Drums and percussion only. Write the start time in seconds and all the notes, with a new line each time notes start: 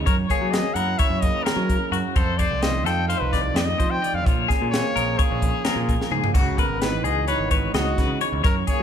0.07 kick, closed hi-hat
0.30 kick, closed hi-hat
0.53 snare, closed hi-hat
0.76 closed hi-hat
0.99 kick, closed hi-hat
1.22 kick, closed hi-hat
1.46 snare, closed hi-hat
1.69 kick, closed hi-hat
1.93 closed hi-hat
2.16 kick, closed hi-hat
2.39 kick, closed hi-hat
2.62 snare, closed hi-hat
2.86 snare, closed hi-hat
3.10 closed hi-hat
3.33 kick, snare, closed hi-hat
3.56 snare, closed hi-hat
3.80 kick, closed hi-hat
4.04 closed hi-hat
4.26 kick, closed hi-hat
4.50 kick, snare, closed hi-hat
4.74 snare, closed hi-hat
4.97 closed hi-hat
5.19 kick, closed hi-hat
5.42 kick, closed hi-hat
5.65 snare, closed hi-hat
5.89 kick, closed hi-hat
6.01 snare
6.12 mid tom
6.24 floor tom
6.35 kick, closed hi-hat, splash
6.58 kick, closed hi-hat
6.82 snare, closed hi-hat
7.05 closed hi-hat
7.28 closed hi-hat
7.51 kick, closed hi-hat
7.74 snare, closed hi-hat
7.98 kick, snare, closed hi-hat
8.21 closed hi-hat
8.44 kick, closed hi-hat
8.67 kick, closed hi-hat